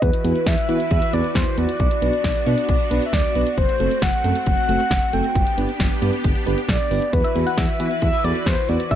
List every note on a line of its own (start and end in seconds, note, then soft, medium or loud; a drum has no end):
0.02 0.11 E2 loud
0.02 1.78 E3 medium
0.02 1.78 E4 medium
0.02 5.31 F#4 medium
0.02 1.78 B4 medium
0.02 0.48 B4 medium
0.02 kick loud
0.02 closed hi-hat medium
0.13 closed hi-hat medium
0.24 0.33 E2 loud
0.24 0.37 B3 medium
0.24 0.37 E4 medium
0.24 0.37 F#4 medium
0.24 0.37 B4 medium
0.24 closed hi-hat medium
0.36 closed hi-hat soft
0.46 0.55 E2 loud
0.46 0.91 E5 medium
0.46 kick loud
0.46 snare loud
0.46 closed hi-hat medium
0.58 closed hi-hat medium
0.69 0.78 E3 loud
0.69 0.81 B3 medium
0.69 0.81 E4 medium
0.69 0.81 F#4 medium
0.69 0.81 B4 medium
0.69 closed hi-hat medium
0.80 closed hi-hat soft
0.91 1.00 E2 loud
0.91 1.15 E5 loud
0.91 kick loud
0.91 closed hi-hat medium
1.02 closed hi-hat medium
1.13 1.22 E2 loud
1.13 1.26 B3 medium
1.13 1.26 E4 medium
1.13 1.26 F#4 medium
1.13 1.26 B4 medium
1.13 1.35 D5 medium
1.13 closed hi-hat medium
1.24 closed hi-hat medium
1.35 1.44 E2 loud
1.35 1.56 C5 medium
1.35 kick loud
1.35 snare loud
1.35 closed hi-hat medium
1.47 closed hi-hat medium
1.58 1.66 E2 loud
1.58 1.70 B3 medium
1.58 1.70 E4 medium
1.58 1.70 F#4 medium
1.58 1.70 B4 medium
1.58 3.02 D5 loud
1.58 closed hi-hat medium
1.69 closed hi-hat medium
1.80 1.89 B1 loud
1.80 3.56 B3 medium
1.80 3.56 D4 medium
1.80 kick loud
1.80 closed hi-hat medium
1.91 closed hi-hat medium
2.02 2.11 B1 loud
2.02 2.15 B3 medium
2.02 2.15 D4 medium
2.02 2.15 F#4 medium
2.02 2.15 B4 medium
2.02 closed hi-hat medium
2.13 closed hi-hat soft
2.24 2.33 B1 loud
2.24 kick loud
2.24 snare loud
2.24 closed hi-hat medium
2.35 closed hi-hat medium
2.46 2.55 B2 loud
2.46 2.59 B3 medium
2.46 2.59 D4 medium
2.46 2.59 F#4 medium
2.46 2.59 D5 loud
2.46 closed hi-hat medium
2.58 closed hi-hat soft
2.69 2.78 B1 loud
2.69 kick loud
2.69 closed hi-hat medium
2.80 closed hi-hat medium
2.91 3.00 B1 loud
2.91 3.04 B3 medium
2.91 3.04 D4 medium
2.91 3.04 F#4 medium
2.91 3.04 B4 loud
2.91 closed hi-hat medium
3.02 3.15 E5 medium
3.02 closed hi-hat medium
3.13 3.22 D2 medium
3.13 3.57 D5 loud
3.13 kick loud
3.13 snare loud
3.13 closed hi-hat medium
3.24 closed hi-hat medium
3.35 3.44 B1 medium
3.35 3.48 B3 medium
3.35 3.48 D4 medium
3.35 3.48 F#4 medium
3.35 3.48 B4 medium
3.35 closed hi-hat medium
3.47 closed hi-hat medium
3.58 3.66 F#1 loud
3.58 5.34 A3 medium
3.58 5.34 C4 medium
3.58 4.04 C5 loud
3.58 kick loud
3.58 closed hi-hat medium
3.69 closed hi-hat medium
3.80 3.89 F#1 loud
3.80 3.92 A3 medium
3.80 3.92 C4 medium
3.80 3.92 F#4 medium
3.80 3.92 A4 medium
3.80 closed hi-hat medium
3.91 closed hi-hat soft
4.02 4.11 F#1 loud
4.02 4.46 F#5 loud
4.02 kick loud
4.02 snare loud
4.02 closed hi-hat medium
4.13 closed hi-hat medium
4.24 4.33 F#2 loud
4.24 4.37 A3 medium
4.24 4.37 C4 medium
4.24 4.37 F#4 medium
4.24 4.37 A4 medium
4.24 closed hi-hat medium
4.35 closed hi-hat soft
4.46 4.55 F#1 loud
4.46 5.15 F#5 loud
4.46 kick loud
4.46 closed hi-hat medium
4.58 closed hi-hat medium
4.69 4.78 F#1 medium
4.69 4.81 A3 medium
4.69 4.81 C4 medium
4.69 4.81 F#4 medium
4.69 4.81 A4 medium
4.69 closed hi-hat medium
4.80 closed hi-hat medium
4.91 5.00 F#1 loud
4.91 kick loud
4.91 snare loud
4.91 closed hi-hat medium
5.02 closed hi-hat medium
5.13 5.22 F#1 loud
5.13 5.26 A3 medium
5.13 5.26 C4 medium
5.13 5.26 F#4 medium
5.13 5.26 A4 medium
5.13 5.58 G5 loud
5.13 closed hi-hat medium
5.24 closed hi-hat medium
5.35 5.44 G1 loud
5.35 7.11 B3 medium
5.35 7.11 D4 medium
5.35 7.11 G4 medium
5.35 kick loud
5.35 closed hi-hat medium
5.47 closed hi-hat medium
5.58 5.66 G1 loud
5.58 5.70 B3 medium
5.58 5.70 D4 medium
5.58 5.70 G4 medium
5.58 5.70 B4 medium
5.58 closed hi-hat medium
5.69 closed hi-hat soft
5.80 5.89 G1 loud
5.80 kick loud
5.80 snare loud
5.80 closed hi-hat medium
5.91 closed hi-hat medium
6.02 6.11 G2 loud
6.02 6.15 B3 medium
6.02 6.15 D4 medium
6.02 6.15 G4 medium
6.02 6.15 B4 loud
6.02 closed hi-hat medium
6.13 closed hi-hat soft
6.24 6.33 G1 loud
6.24 kick loud
6.24 closed hi-hat medium
6.35 closed hi-hat medium
6.46 6.55 G1 loud
6.46 6.59 B3 medium
6.46 6.59 D4 medium
6.46 6.59 G4 medium
6.46 6.59 B4 loud
6.46 closed hi-hat medium
6.58 closed hi-hat medium
6.69 6.77 B1 loud
6.69 7.15 D5 loud
6.69 kick loud
6.69 snare loud
6.69 closed hi-hat medium
6.80 closed hi-hat medium
6.91 7.00 G1 loud
6.91 7.04 B3 medium
6.91 7.04 D4 medium
6.91 7.04 G4 medium
6.91 7.04 B4 medium
6.91 open hi-hat medium
7.02 closed hi-hat medium
7.13 7.22 E2 loud
7.13 8.89 E3 medium
7.13 8.89 E4 medium
7.13 8.95 F#4 medium
7.13 7.59 B4 loud
7.13 8.89 B4 medium
7.13 kick loud
7.13 closed hi-hat medium
7.24 7.32 E5 medium
7.24 closed hi-hat medium
7.35 7.44 E2 loud
7.35 7.48 B3 medium
7.35 7.48 E4 medium
7.35 7.48 F#4 medium
7.35 7.48 B4 medium
7.35 closed hi-hat medium
7.47 7.78 F#5 medium
7.47 closed hi-hat soft
7.58 7.66 E2 loud
7.58 8.01 E5 loud
7.58 kick loud
7.58 snare loud
7.58 closed hi-hat medium
7.69 closed hi-hat medium
7.80 7.89 E3 loud
7.80 7.92 B3 medium
7.80 7.92 E4 medium
7.80 7.92 F#4 medium
7.80 7.92 B4 medium
7.80 closed hi-hat medium
7.91 closed hi-hat soft
8.02 8.11 E2 loud
8.02 8.26 E5 loud
8.02 kick loud
8.02 closed hi-hat medium
8.13 closed hi-hat medium
8.24 8.33 E2 loud
8.24 8.37 B3 medium
8.24 8.37 E4 medium
8.24 8.37 F#4 medium
8.24 8.37 A4 medium
8.24 8.46 D5 loud
8.24 closed hi-hat medium
8.36 closed hi-hat medium
8.46 8.55 E2 loud
8.46 8.70 C5 medium
8.46 kick loud
8.46 snare loud
8.46 closed hi-hat medium
8.58 closed hi-hat medium
8.69 8.78 E2 loud
8.69 8.81 B3 medium
8.69 8.81 E4 medium
8.69 8.81 F#4 medium
8.69 8.81 B4 medium
8.69 8.95 D5 loud
8.69 closed hi-hat medium
8.80 closed hi-hat medium
8.91 8.95 B1 loud
8.91 8.95 B3 medium
8.91 8.95 D4 medium
8.91 8.95 E5 loud
8.91 kick loud
8.91 closed hi-hat medium